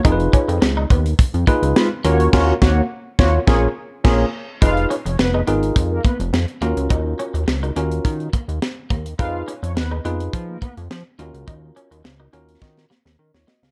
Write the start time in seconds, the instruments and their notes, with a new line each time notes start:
0.05 analog synth bass F1, clean electric guitar D#4, tine electric piano D#4 F4 G#4 A#4, kick, closed hi-hat
0.12 tine electric piano B4
0.20 closed hi-hat
0.33 clean electric guitar C#4, kick, closed hi-hat
0.48 analog synth bass F2, muted clean electric guitar stroke, closed hi-hat
0.62 analog synth bass C#2, muted clean electric guitar stroke, snare
0.77 clean electric guitar D#4
0.90 analog synth bass D#2, clean electric guitar B3, kick, closed hi-hat
1.06 closed hi-hat
1.19 analog synth bass F2, kick, closed hi-hat
1.34 analog synth bass F2, closed hi-hat
1.47 clean electric guitar A#3, tine electric piano D#4 F4 G#4 B4, kick, closed hi-hat
1.62 analog synth bass C#2, closed hi-hat
1.76 analog polysynth G#3 F4 B4, snare
2.04 analog synth bass D#2, analog polysynth A#3 F#4 C#5, clean electric guitar A#3, tine electric piano C#4 F4 F#4 A#4, closed hi-hat
2.20 closed hi-hat
2.33 analog synth bass D#2, analog polysynth A#3 F#4 C#5, tine electric piano C#4 F4 F#4 A#4, kick, snare, crash
2.61 analog synth bass D#2, analog polysynth A#3 F#4 C#5, tine electric piano A#3 F#4, kick, snare
3.19 analog synth bass D#2, analog polysynth A#3 F#4 C#5, tine electric piano F4 C#5, kick, snare
3.47 analog synth bass A#1, analog polysynth A#3 G#4 C#5, tine electric piano C#4 F4 G#4 A#4, kick, snare
4.04 analog synth bass A#1, analog polysynth A#3 G#4 C#5, tine electric piano C#4 F4 G#4 A#4, kick, snare, crash
4.62 analog synth bass F1, tine electric piano D#4 F4 G#4 B4, clean electric guitar D#4, analog polysynth F4 F5, kick, closed hi-hat
4.77 closed hi-hat
4.90 clean electric guitar C#4, closed hi-hat
5.05 analog synth bass F1, analog polysynth C#4 C#5, muted clean electric guitar stroke, closed hi-hat
5.19 analog synth bass F1, analog polysynth B3 B4, muted clean electric guitar stroke, snare
5.34 clean electric guitar D#4, tine electric piano G#4 B4
5.47 analog synth bass G#1, clean electric guitar B3, tine electric piano D#4 F4 G#4 A#4, closed hi-hat
5.63 closed hi-hat
5.76 analog synth bass F2, kick, closed hi-hat
5.91 analog polysynth A#3 A#4
6.05 clean electric guitar A#3, analog polysynth B3 B4, kick, closed hi-hat
6.20 analog synth bass F1, closed hi-hat
6.33 analog synth bass F2, snare
6.48 closed hi-hat
6.61 analog synth bass D#2, clean electric guitar A#3, tine electric piano C#4 F4 F#4 A#4, closed hi-hat
6.77 analog synth bass C#2, closed hi-hat
6.90 analog synth bass D#2, clean electric guitar D#4, kick, closed hi-hat
7.19 clean electric guitar C#4, closed hi-hat
7.34 analog synth bass D#2, muted clean electric guitar stroke, closed hi-hat
7.47 analog synth bass C#2, muted clean electric guitar stroke, snare
7.63 clean electric guitar D#4, tine electric piano F#4 A#4, closed hi-hat
7.76 analog synth bass D#2, tine electric piano C#4 F4 F#4 A#4, clean electric guitar C#4, closed hi-hat
7.91 closed hi-hat
8.05 analog synth bass D#3, kick, closed hi-hat
8.20 closed hi-hat
8.33 clean electric guitar A#3, kick, closed hi-hat
8.48 analog synth bass D#2, closed hi-hat
8.62 snare
8.90 analog synth bass D#2, clean electric guitar A#3, kick, closed hi-hat
9.06 closed hi-hat
9.19 analog synth bass F2, tine electric piano D#4 F4 G#4 B4, clean electric guitar D#4, analog polysynth F4 F5, kick, closed hi-hat
9.48 clean electric guitar C#4, closed hi-hat
9.63 analog synth bass F2, analog polysynth C#4 C#5, muted clean electric guitar stroke, closed hi-hat
9.76 analog synth bass D#2, analog polysynth B3 B4, muted clean electric guitar stroke, snare
9.91 clean electric guitar D#4, tine electric piano G#4 B4
10.05 analog synth bass F2, clean electric guitar B3, tine electric piano D#4 F4 G#4 B4, closed hi-hat
10.20 closed hi-hat
10.33 analog synth bass F3, kick, closed hi-hat
10.48 analog polysynth A#3 A#4
10.61 clean electric guitar A#3, analog polysynth B3 B4, kick, closed hi-hat
10.77 analog synth bass F2, closed hi-hat
10.91 analog synth bass F3, snare
11.19 analog synth bass D#2, clean electric guitar A#3, tine electric piano C#4 F4 F#4 A#4, closed hi-hat
11.34 analog synth bass C#2, closed hi-hat
11.47 analog synth bass D#2, clean electric guitar D#4, kick, closed hi-hat
11.76 clean electric guitar C#4, closed hi-hat
11.91 analog synth bass D#2, muted clean electric guitar stroke, closed hi-hat
12.04 analog synth bass C#2, muted clean electric guitar stroke, snare
12.20 clean electric guitar D#4, tine electric piano F#4 A#4
12.33 analog synth bass D#2, tine electric piano C#4 F4 F#4 A#4, clean electric guitar C#4, closed hi-hat
12.48 closed hi-hat
12.62 analog synth bass D#3, kick, snare
12.77 snare
12.90 clean electric guitar A#3, snare
13.05 analog synth bass D#2, snare
13.19 analog synth bass D#3, tine electric piano C#4 A#4
13.34 analog synth bass D#2, tine electric piano F4 C#5, snare
13.47 clean electric guitar A#3, tine electric piano F#4 D#5, snare
13.63 analog synth bass C#2, tine electric piano G#4 F5, snare